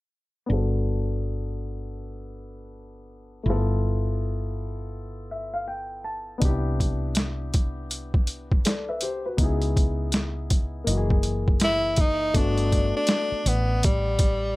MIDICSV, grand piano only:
0, 0, Header, 1, 2, 480
1, 0, Start_track
1, 0, Key_signature, 1, "major"
1, 0, Tempo, 740741
1, 320, Time_signature, 4, 2, 24, 8
1, 9435, End_track
2, 0, Start_track
2, 0, Title_t, "Grand piano"
2, 0, Program_c, 0, 0
2, 300, Note_on_c, 0, 59, 61
2, 315, Note_on_c, 0, 62, 55
2, 328, Note_on_c, 0, 66, 57
2, 342, Note_on_c, 0, 69, 66
2, 2204, Note_off_c, 0, 59, 0
2, 2212, Note_off_c, 0, 62, 0
2, 2218, Note_off_c, 0, 66, 0
2, 2225, Note_off_c, 0, 69, 0
2, 2225, Note_on_c, 0, 57, 52
2, 2240, Note_on_c, 0, 64, 58
2, 2253, Note_on_c, 0, 65, 58
2, 2267, Note_on_c, 0, 59, 65
2, 2268, Note_on_c, 0, 69, 74
2, 2285, Note_off_c, 0, 57, 0
2, 3442, Note_on_c, 0, 76, 56
2, 3580, Note_off_c, 0, 76, 0
2, 3587, Note_on_c, 0, 77, 63
2, 3673, Note_off_c, 0, 77, 0
2, 3678, Note_on_c, 0, 79, 61
2, 3902, Note_off_c, 0, 79, 0
2, 3917, Note_on_c, 0, 81, 60
2, 4125, Note_off_c, 0, 59, 0
2, 4134, Note_off_c, 0, 64, 0
2, 4134, Note_on_c, 0, 59, 68
2, 4141, Note_off_c, 0, 65, 0
2, 4142, Note_off_c, 0, 81, 0
2, 4148, Note_off_c, 0, 69, 0
2, 4148, Note_on_c, 0, 62, 62
2, 4163, Note_on_c, 0, 63, 49
2, 4178, Note_on_c, 0, 67, 72
2, 4204, Note_on_c, 0, 64, 60
2, 4214, Note_off_c, 0, 63, 0
2, 5583, Note_off_c, 0, 67, 0
2, 5609, Note_on_c, 0, 74, 55
2, 5610, Note_on_c, 0, 69, 46
2, 5747, Note_off_c, 0, 69, 0
2, 5747, Note_off_c, 0, 74, 0
2, 5758, Note_on_c, 0, 76, 61
2, 5760, Note_on_c, 0, 71, 52
2, 5840, Note_off_c, 0, 76, 0
2, 5841, Note_off_c, 0, 71, 0
2, 5845, Note_on_c, 0, 72, 64
2, 5848, Note_on_c, 0, 67, 54
2, 5985, Note_off_c, 0, 72, 0
2, 5987, Note_off_c, 0, 67, 0
2, 5998, Note_on_c, 0, 71, 54
2, 6001, Note_on_c, 0, 66, 46
2, 6041, Note_off_c, 0, 59, 0
2, 6048, Note_off_c, 0, 62, 0
2, 6073, Note_on_c, 0, 59, 69
2, 6076, Note_off_c, 0, 64, 0
2, 6087, Note_on_c, 0, 63, 64
2, 6100, Note_on_c, 0, 64, 66
2, 6115, Note_on_c, 0, 68, 75
2, 6222, Note_off_c, 0, 71, 0
2, 6224, Note_off_c, 0, 66, 0
2, 7017, Note_off_c, 0, 59, 0
2, 7024, Note_off_c, 0, 63, 0
2, 7026, Note_on_c, 0, 58, 67
2, 7031, Note_off_c, 0, 64, 0
2, 7039, Note_off_c, 0, 68, 0
2, 7043, Note_on_c, 0, 75, 61
2, 7056, Note_on_c, 0, 52, 56
2, 7070, Note_on_c, 0, 66, 55
2, 7108, Note_off_c, 0, 66, 0
2, 7112, Note_on_c, 0, 68, 69
2, 7974, Note_off_c, 0, 58, 0
2, 7982, Note_off_c, 0, 75, 0
2, 7989, Note_off_c, 0, 52, 0
2, 7995, Note_on_c, 0, 57, 68
2, 8004, Note_on_c, 0, 59, 62
2, 8011, Note_on_c, 0, 62, 62
2, 8017, Note_off_c, 0, 68, 0
2, 8018, Note_on_c, 0, 66, 74
2, 8676, Note_off_c, 0, 57, 0
2, 8681, Note_off_c, 0, 59, 0
2, 8684, Note_off_c, 0, 62, 0
2, 8688, Note_off_c, 0, 66, 0
2, 9435, End_track
0, 0, End_of_file